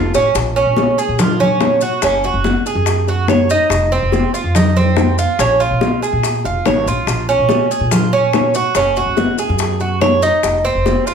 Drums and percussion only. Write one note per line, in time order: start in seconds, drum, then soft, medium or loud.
0.14 high bongo medium
0.14 maracas medium
0.35 high bongo medium
0.35 high conga soft
0.35 maracas medium
0.56 high conga soft
0.56 maracas soft
0.76 high bongo medium
0.76 high conga medium
0.76 maracas soft
0.98 high conga soft
0.98 maracas medium
1.19 high bongo medium
1.19 high conga soft
1.19 low conga medium
1.19 maracas medium
1.40 high conga soft
1.40 low conga medium
1.40 maracas soft
1.60 high bongo medium
1.60 low bongo medium
1.60 high conga medium
1.60 maracas soft
1.81 high conga soft
1.81 maracas medium
2.02 high bongo medium
2.02 high conga soft
2.02 maracas medium
2.24 high conga soft
2.24 maracas soft
2.44 high bongo medium
2.44 high conga loud
2.44 maracas soft
2.66 high bongo soft
2.66 maracas medium
2.86 high bongo medium
2.86 high conga soft
2.86 maracas medium
3.08 high bongo soft
3.08 high conga soft
3.08 maracas soft
3.28 high bongo medium
3.28 low bongo medium
3.28 high conga medium
3.28 maracas soft
3.49 high bongo soft
3.49 maracas medium
3.70 high bongo medium
3.70 high conga soft
3.70 maracas medium
3.92 high conga soft
3.92 maracas soft
4.12 high bongo medium
4.12 high conga medium
4.12 maracas soft
4.34 high conga soft
4.34 maracas medium
4.55 high bongo medium
4.55 high conga soft
4.55 low conga medium
4.55 maracas medium
4.76 high conga soft
4.76 low conga medium
4.76 maracas soft
4.97 high bongo medium
4.97 low bongo loud
4.97 high conga medium
4.97 maracas soft
5.18 high conga soft
5.18 maracas medium
5.39 high bongo medium
5.39 high conga soft
5.39 maracas medium
5.61 high conga soft
5.61 maracas soft
5.81 high bongo medium
5.81 high conga loud
5.81 maracas soft
6.02 high bongo soft
6.02 maracas medium
6.23 high bongo medium
6.23 high conga soft
6.23 maracas medium
6.44 high bongo soft
6.44 high conga soft
6.44 maracas soft
6.66 high bongo medium
6.66 low bongo medium
6.66 high conga medium
6.66 maracas soft
6.87 high bongo soft
6.87 maracas medium
7.07 high bongo medium
7.07 high conga soft
7.07 maracas medium
7.28 high conga soft
7.28 maracas soft
7.49 high bongo medium
7.49 high conga loud
7.49 maracas soft
7.71 high conga soft
7.71 maracas medium
7.91 high bongo medium
7.91 high conga soft
7.91 low conga medium
7.91 maracas loud
8.13 high conga soft
8.13 maracas soft
8.33 high bongo medium
8.33 low bongo medium
8.33 high conga medium
8.33 maracas soft
8.54 high conga soft
8.54 maracas medium
8.75 high bongo medium
8.75 high conga soft
8.75 maracas medium
8.96 high conga soft
8.96 maracas soft
9.17 high bongo medium
9.17 high conga loud
9.17 maracas soft
9.38 high bongo soft
9.38 maracas medium
9.59 high bongo medium
9.59 high conga soft
9.59 maracas loud
9.80 high bongo soft
9.80 high conga soft
9.80 maracas soft
10.01 high bongo medium
10.01 low bongo medium
10.01 high conga medium
10.01 maracas soft
10.22 high bongo soft
10.22 maracas medium
10.43 high bongo medium
10.43 high conga soft
10.43 maracas medium
10.65 high conga soft
10.65 maracas soft
10.86 high bongo medium
10.86 high conga medium
10.86 maracas soft
11.07 high conga soft
11.07 maracas medium